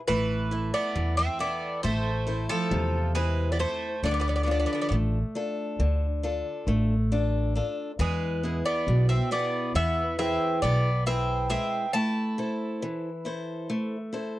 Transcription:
0.08 0.70 A1 medium
0.08 0.70 E3 medium
0.08 0.94 A3 medium
0.08 0.73 B4 medium
0.51 1.22 E4 soft
0.51 1.22 A4 soft
0.51 1.23 E5 medium
0.74 1.15 B3 medium
0.74 1.15 D5 medium
0.96 1.26 E2 medium
0.96 1.81 E3 medium
1.17 1.39 C4 medium
1.17 1.38 E5 medium
1.39 1.81 B3 medium
1.39 2.10 E4 soft
1.39 2.10 A4 soft
1.39 1.81 D5 medium
1.39 2.10 E5 soft
1.83 2.45 A1 medium
1.83 2.69 A3 medium
1.83 2.46 A3 medium
1.83 2.45 C5 medium
2.27 2.97 E4 soft
2.27 2.97 A4 soft
2.27 2.98 C5 medium
2.49 3.12 F3 medium
2.49 3.11 A4 medium
2.71 3.64 E2 medium
2.71 3.57 C3 medium
3.15 3.49 G#3 medium
3.15 3.86 C4 medium
3.15 3.58 E4 medium
3.15 3.51 B4 medium
3.52 3.59 B3 soft
3.52 3.59 D5 medium
3.59 4.00 A3 medium
3.59 3.95 E4 soft
3.59 3.95 A4 soft
3.59 4.05 C5 medium
3.59 3.95 C5 soft
4.03 4.64 D2 medium
4.03 4.89 D3 medium
4.03 4.10 A3 medium
4.03 4.12 D5 medium
4.11 4.18 B3 soft
4.11 4.20 D5 medium
4.20 4.26 B3 medium
4.20 4.27 D5 medium
4.28 4.34 B3 soft
4.28 4.34 D5 soft
4.36 4.42 B3 soft
4.36 4.42 D5 soft
4.43 4.50 B3 soft
4.43 5.17 D4 soft
4.43 5.17 F4 soft
4.43 4.49 D5 soft
4.48 4.57 B3 soft
4.48 5.18 A4 medium
4.48 4.57 D5 medium
4.59 4.65 B3 soft
4.59 4.65 D5 soft
4.66 4.72 B3 medium
4.66 4.71 D5 medium
4.73 4.80 B3 soft
4.73 4.79 D5 soft
4.81 4.87 B3 medium
4.81 4.88 D5 medium
4.89 5.22 A1 medium
4.89 5.77 A3 medium
4.89 4.95 B3 soft
4.89 4.95 D5 medium
5.35 6.06 D4 soft
5.35 6.06 F4 soft
5.35 6.06 A4 soft
5.79 6.41 D2 medium
5.79 6.65 D3 medium
6.23 6.93 D4 soft
6.23 6.94 F4 soft
6.23 6.94 A4 soft
6.67 7.59 A1 loud
6.67 7.53 A3 medium
7.12 7.55 D4 medium
7.12 7.55 F4 soft
7.12 7.55 A4 soft
7.56 7.91 D4 soft
7.56 7.91 F4 soft
7.56 7.91 A4 soft
7.99 8.60 E2 medium
7.99 8.84 E3 medium
7.99 8.62 G#3 medium
7.99 8.65 B4 medium
8.43 9.13 B3 soft
8.43 9.14 E4 soft
8.43 9.14 G#4 soft
8.66 9.06 B3 medium
8.66 9.08 D5 medium
8.87 9.17 B1 medium
8.87 9.72 B2 medium
9.09 9.30 C4 medium
9.09 9.31 E5 medium
9.31 10.01 B3 soft
9.31 9.72 B3 medium
9.31 10.01 E4 soft
9.31 10.02 G#4 soft
9.31 9.72 D5 medium
9.74 10.36 E2 medium
9.74 10.60 E3 medium
9.74 10.16 B3 medium
9.74 10.16 E5 medium
10.18 10.59 C4 medium
10.18 10.89 E4 soft
10.18 10.89 G#4 soft
10.18 10.89 B4 soft
10.18 10.62 E5 medium
10.62 11.55 B1 medium
10.62 11.04 B3 medium
10.62 11.03 D5 medium
11.06 11.48 C4 medium
11.06 11.49 E4 soft
11.06 11.49 G#4 medium
11.06 11.76 B4 soft
11.06 11.47 E5 medium
11.49 11.85 G#3 soft
11.49 11.91 C4 medium
11.49 11.85 E4 soft
11.49 11.85 G#4 soft
11.49 11.93 E5 medium
11.93 12.79 A3 medium
11.93 14.39 E4 medium
11.93 14.39 A5 medium
12.38 13.08 E4 soft
12.38 13.08 A4 soft
12.38 13.09 C5 soft
12.82 13.67 E3 medium
13.25 13.96 E4 soft
13.25 13.96 A4 soft
13.25 13.96 C5 soft
13.70 14.39 A3 medium
14.13 14.39 E4 soft
14.13 14.39 A4 soft
14.13 14.39 C5 soft

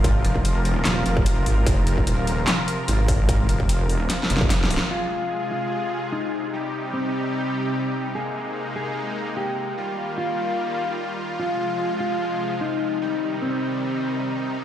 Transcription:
0.00 0.23 G#1 loud
0.00 4.87 C3 medium
0.00 4.87 F3 medium
0.00 4.87 F4 medium
0.00 4.89 A#4 loud
0.04 kick loud
0.04 closed hi-hat medium
0.25 0.67 F1 loud
0.25 closed hi-hat medium
0.36 kick medium
0.45 closed hi-hat medium
0.65 0.84 E1 loud
0.65 closed hi-hat medium
0.85 1.04 D#1 loud
0.85 snare loud
0.85 clap medium
0.85 closed hi-hat medium
1.06 1.45 F1 loud
1.06 closed hi-hat medium
1.17 kick loud
1.26 closed hi-hat medium
1.46 1.65 G#1 medium
1.46 open hi-hat medium
1.67 2.06 F1 medium
1.67 kick loud
1.67 closed hi-hat medium
1.87 closed hi-hat medium
1.98 kick medium
2.07 2.46 D#1 loud
2.07 closed hi-hat medium
2.27 closed hi-hat medium
2.48 snare loud
2.48 clap medium
2.48 closed hi-hat medium
2.68 closed hi-hat medium
2.88 3.47 G#1 loud
2.88 closed hi-hat medium
3.08 kick loud
3.08 open hi-hat medium
3.29 kick loud
3.29 closed hi-hat medium
3.49 3.91 F1 loud
3.49 closed hi-hat medium
3.60 kick medium
3.69 closed hi-hat medium
3.89 4.08 E1 loud
3.89 open hi-hat medium
4.10 snare medium
4.10 closed hi-hat medium
4.23 snare medium
4.30 4.39 F1 loud
4.30 closed hi-hat medium
4.37 snare medium
4.41 4.80 F1 loud
4.41 kick loud
4.50 snare loud
4.50 closed hi-hat medium
4.64 snare loud
4.71 open hi-hat medium
4.77 snare loud
4.91 9.73 C3 medium
4.91 6.51 G#3 medium
4.91 5.44 F4 medium
4.91 6.51 F4 medium
4.91 6.51 G#4 medium
5.52 6.05 F4 medium
6.12 6.86 D#4 medium
6.53 8.14 G3 medium
6.53 8.14 D#4 medium
6.53 8.14 G4 medium
6.93 8.08 C4 medium
8.15 9.76 G#3 medium
8.15 9.76 A#3 medium
8.15 9.76 D#4 medium
8.15 8.69 G#4 medium
8.76 9.29 G#4 medium
9.37 10.10 G4 medium
9.77 11.38 D#3 medium
9.77 11.38 G3 medium
9.77 11.38 A#3 medium
9.77 12.98 F4 medium
10.18 11.32 F4 medium
11.40 14.64 C3 medium
11.40 13.00 F3 medium
11.40 13.00 G#3 medium
11.40 11.93 F4 medium
12.00 12.54 F4 medium
12.61 13.35 D#4 medium
13.02 14.62 D#3 medium
13.02 14.62 G3 medium
13.02 14.64 D#4 loud
13.42 14.56 C4 medium

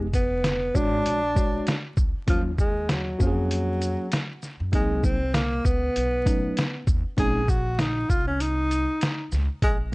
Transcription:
0.00 0.71 F1 loud
0.14 0.77 B3 medium
0.14 kick medium
0.14 closed hi-hat soft
0.14 shaker soft
0.44 snare loud
0.44 closed hi-hat medium
0.74 1.00 G#1 medium
0.74 1.19 G#3 medium
0.74 1.20 D4 medium
0.74 1.98 D4 loud
0.74 1.20 F#4 medium
0.74 1.19 C#5 medium
0.74 kick medium
0.74 shaker soft
1.06 1.56 A#1 medium
1.06 closed hi-hat medium
1.35 1.73 G#3 medium
1.35 1.74 D4 medium
1.35 1.74 F#4 medium
1.35 1.73 C#5 medium
1.35 kick medium
1.35 shaker medium
1.67 snare loud
1.67 closed hi-hat medium
1.97 2.12 C#2 medium
1.97 kick medium
1.97 shaker soft
2.27 3.16 D#2 medium
2.27 2.43 F3 medium
2.27 2.50 F#3 medium
2.27 2.50 A#3 medium
2.27 2.51 C#4 medium
2.27 2.51 F4 medium
2.27 kick loud
2.27 closed hi-hat medium
2.58 2.92 G#3 medium
2.58 kick medium
2.58 shaker soft
2.89 3.21 F#3 medium
2.89 snare loud
2.89 closed hi-hat medium
3.19 3.95 F2 medium
3.19 4.39 F#3 medium
3.19 4.06 A#3 medium
3.19 4.06 C#4 medium
3.19 3.28 F#4 medium
3.19 kick medium
3.19 shaker soft
3.27 4.10 G#4 medium
3.51 closed hi-hat medium
3.82 closed hi-hat medium
3.82 shaker medium
4.12 snare loud
4.12 closed hi-hat medium
4.42 snare soft
4.42 shaker soft
4.60 4.71 F#2 medium
4.72 5.61 C2 medium
4.72 5.17 F#3 medium
4.72 5.06 G#3 medium
4.72 5.17 A#3 medium
4.72 5.17 C4 medium
4.72 5.18 D#4 medium
4.72 kick loud
4.72 closed hi-hat medium
5.04 5.35 C4 medium
5.04 kick medium
5.04 shaker soft
5.34 5.67 A#3 medium
5.34 snare loud
5.34 closed hi-hat medium
5.65 5.90 C#2 medium
5.65 6.87 B3 medium
5.65 kick medium
5.65 shaker soft
5.96 6.46 B1 medium
5.96 closed hi-hat medium
6.25 6.63 F#3 medium
6.25 6.63 A3 medium
6.25 6.64 C#4 medium
6.25 6.64 D#4 medium
6.25 kick medium
6.25 closed hi-hat medium
6.25 shaker medium
6.57 snare loud
6.57 closed hi-hat medium
6.87 7.02 D#2 medium
6.87 kick medium
6.87 shaker soft
7.17 8.06 A#1 loud
7.17 7.40 G#3 medium
7.17 7.40 C4 medium
7.17 7.41 C#4 medium
7.17 7.41 D#4 medium
7.17 7.51 G#4 loud
7.17 kick loud
7.17 closed hi-hat medium
7.48 7.81 F#4 medium
7.48 kick medium
7.48 shaker soft
7.79 8.11 D#4 medium
7.79 snare loud
7.79 closed hi-hat medium
8.10 8.84 C2 medium
8.10 8.26 F4 medium
8.10 kick medium
8.10 shaker soft
8.27 8.42 C#4 medium
8.40 9.32 D#4 medium
8.40 closed hi-hat medium
8.71 closed hi-hat medium
8.71 shaker soft
9.01 snare loud
9.01 closed hi-hat medium
9.32 9.46 C#2 medium
9.32 snare soft
9.32 shaker soft
9.62 9.94 A#1 loud
9.62 9.77 G#3 medium
9.62 kick loud
9.62 closed hi-hat medium

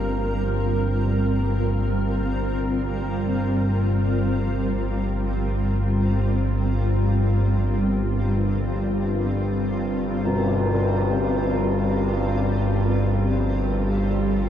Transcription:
0.00 14.49 G1 medium
0.00 14.49 G2 medium
0.00 14.49 G3 medium
0.00 14.49 C4 medium
0.00 10.24 F4 medium
0.00 14.49 F4 medium
0.00 12.10 A#4 medium
10.25 14.49 F4 medium
10.25 tam-tam medium
11.72 14.49 A4 medium

